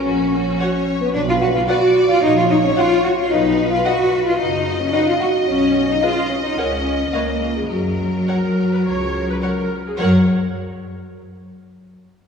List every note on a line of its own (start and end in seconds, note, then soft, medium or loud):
0.00 0.98 C#4 medium
0.00 0.97 C#5 medium
0.06 0.51 A#1 medium
0.06 0.59 F#4 medium
0.61 0.69 F#4 soft
0.61 0.69 C#5 medium
0.61 1.15 C#5 medium
0.61 0.69 C#5 medium
0.61 0.69 F#5 medium
1.01 1.07 B3 medium
1.01 1.15 B3 medium
1.01 1.14 B4 medium
1.14 1.59 B1 medium
1.14 1.20 D4 medium
1.14 1.21 D4 medium
1.14 1.67 B4 medium
1.14 1.27 D5 medium
1.28 1.34 F4 medium
1.28 1.41 F5 medium
1.41 1.48 F#4 medium
1.41 1.47 F#4 medium
1.41 1.54 F#5 medium
1.54 1.60 F4 medium
1.54 1.62 F4 medium
1.54 1.67 F5 medium
1.67 2.08 F#4 medium
1.67 1.76 F#4 soft
1.67 2.08 F#4 medium
1.67 1.76 B4 medium
1.67 1.76 D5 medium
1.67 2.22 D5 medium
1.67 2.06 F#5 medium
1.67 1.76 F#5 medium
2.09 2.15 F4 medium
2.09 2.23 F4 medium
2.09 2.21 F5 medium
2.22 2.68 A#1 medium
2.22 2.29 D#4 medium
2.22 2.36 D#4 medium
2.22 3.30 C#5 medium
2.22 2.35 D#5 medium
2.36 2.42 F4 medium
2.36 2.43 F4 medium
2.36 2.49 F5 medium
2.50 2.56 D#4 medium
2.50 2.62 D#5 medium
2.63 2.69 C#4 medium
2.63 2.70 C#4 medium
2.63 2.76 C#5 medium
2.77 3.03 F4 medium
2.77 3.04 F4 medium
2.77 2.85 F#4 medium
2.77 2.85 C#5 medium
2.77 3.02 F5 medium
2.77 2.85 F#5 medium
3.03 3.17 F#4 medium
3.03 3.18 F#4 medium
3.03 3.17 F#5 medium
3.16 3.23 F4 medium
3.16 3.32 F4 medium
3.16 3.30 F5 medium
3.30 3.76 B1 medium
3.30 3.70 D#4 medium
3.30 3.72 D#4 medium
3.30 4.37 B4 medium
3.30 3.69 D#5 medium
3.69 3.76 F4 medium
3.69 3.85 F4 medium
3.69 3.84 F5 medium
3.83 4.24 F#4 medium
3.83 3.93 F#4 medium
3.83 4.25 F#4 medium
3.83 3.93 B4 soft
3.83 3.93 D#5 medium
3.83 3.93 F#5 medium
4.24 4.38 F4 medium
4.24 4.39 F4 medium
4.24 4.38 F5 medium
4.38 4.84 F#1 medium
4.38 4.79 D#4 medium
4.38 4.77 D#5 medium
4.38 7.66 D#5 medium
4.79 4.92 C#4 medium
4.79 4.94 C#4 medium
4.79 4.92 C#5 medium
4.93 5.07 D#4 medium
4.93 5.01 F#4 soft
4.93 5.02 B4 soft
4.93 5.06 D#5 medium
4.93 5.01 D#5 soft
4.93 5.02 F#5 medium
5.07 5.13 F4 medium
5.07 5.14 F4 medium
5.07 5.19 F5 medium
5.20 5.47 F#4 medium
5.20 5.29 F#4 medium
5.47 5.93 B1 medium
5.47 5.87 C#4 medium
5.47 5.88 C#4 medium
5.47 5.86 C#5 medium
5.88 6.02 D#4 medium
5.88 6.03 D#4 medium
5.88 6.01 D#5 medium
6.01 6.29 F4 medium
6.01 6.30 F4 medium
6.01 6.10 G#4 soft
6.01 6.11 B4 soft
6.01 6.10 D#5 soft
6.01 6.27 F5 medium
6.29 6.35 C#4 medium
6.29 6.36 C#4 medium
6.29 6.43 C#5 medium
6.43 6.50 D#4 medium
6.43 6.58 D#4 medium
6.43 6.56 D#5 medium
6.57 7.03 C#2 medium
6.57 6.96 C#4 medium
6.57 7.12 C#4 medium
6.57 6.67 A#4 medium
6.57 6.66 C#5 soft
6.57 7.09 C#5 medium
6.57 6.66 F#5 soft
7.13 7.60 C#2 soft
7.13 7.54 A#3 medium
7.13 7.55 A#3 medium
7.13 7.53 A#4 medium
7.13 7.22 B4 soft
7.13 7.22 C#5 soft
7.13 7.22 D#5 soft
7.13 7.22 F5 soft
7.56 7.62 G#3 soft
7.56 7.71 G#3 medium
7.56 7.69 G#4 soft
7.70 8.17 F#2 soft
7.70 9.66 F#3 medium
7.70 9.67 F#3 soft
7.70 9.67 F#4 soft
7.70 9.67 A#4 soft
8.28 8.68 A#4 soft
8.28 8.37 C#5 soft
8.28 8.36 F#5 soft
8.72 8.77 B4 soft
8.85 9.32 C#2 soft
8.85 9.27 C#5 medium
9.29 9.35 B4 soft
9.42 9.84 A#4 soft
9.42 9.50 C#5 soft
9.42 9.50 F#5 soft
9.86 9.91 G#4 soft
9.98 10.29 F#2 medium
9.98 10.21 F#3 medium
9.98 10.29 F#3 medium
9.98 10.29 F#4 medium
9.98 10.29 A#4 soft
9.98 10.29 C#5 medium
9.98 10.30 F#5 soft